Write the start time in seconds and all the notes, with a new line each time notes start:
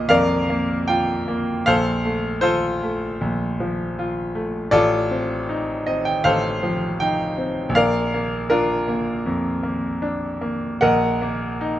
Already playing: A#1 A#3 F4 A#4 D5 D#5
0.09 F2 A#4 D5 F5
0.50 A#3
0.88 F4 G5
1.28 A#3
1.66 A#1 A4 C5 F5
2.05 A3
2.41 F4 A4 C5
2.83 A3
3.21 A#1
3.60 F3
3.99 F4
4.35 A3
4.71 A1 F4 A4 D5
5.11 C4
5.49 D#4
5.87 C4 D#5
6.05 G5
6.24 A1 A4 C5 F5
6.63 F3
7.00 D#4 G5
7.38 C4
7.69 A#1
7.75 A#4 D5 F5
8.14 A#3
8.50 D4 F4 A#4
8.88 A#3
9.26 F2
9.63 A#3
10.02 D4
10.41 A#3
10.81 A#1 A#4 D#5 F#5
11.22 A#3
11.61 D#4